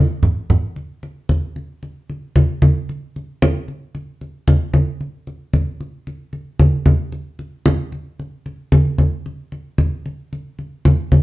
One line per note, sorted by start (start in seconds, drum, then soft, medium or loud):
0.23 low conga medium
0.50 low conga medium
0.76 high conga soft
1.03 high conga soft
1.29 high conga medium
1.56 high conga soft
1.83 high conga soft
2.10 high conga soft
2.36 high conga medium
2.62 high conga medium
2.89 high conga soft
3.16 high conga soft
3.42 high conga medium
3.68 high conga soft
3.95 high conga soft
4.21 high conga soft
4.48 high conga medium
4.74 high conga medium
5.01 high conga soft
5.27 high conga soft
5.53 high conga medium
5.80 high conga soft
6.07 high conga soft
6.33 high conga soft
6.59 high conga medium
6.86 high conga medium
7.12 high conga soft
7.39 high conga soft
7.66 high conga medium
7.92 high conga soft
8.19 high conga soft
8.46 high conga soft
8.72 high conga medium
8.98 high conga medium
9.26 high conga soft
9.52 high conga soft
9.78 high conga medium
10.06 high conga soft
10.33 high conga soft
10.59 high conga soft
10.85 high conga medium
11.12 high conga medium